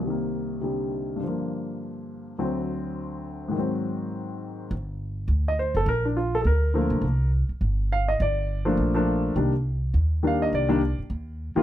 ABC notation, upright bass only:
X:1
M:4/4
L:1/8
Q:"Swing" 1/4=206
K:Gm
V:1 name="Upright bass" clef=bass
z8 | z8 | z8 | z8 |
G,,,4 D,,3 ^F,,, | B,,,4 D,,3 =B,,, | C,,3 z G,,,4 | G,,,4 B,,,4 |
C,,4 E,,4 | C,,3 z E,,3 z |]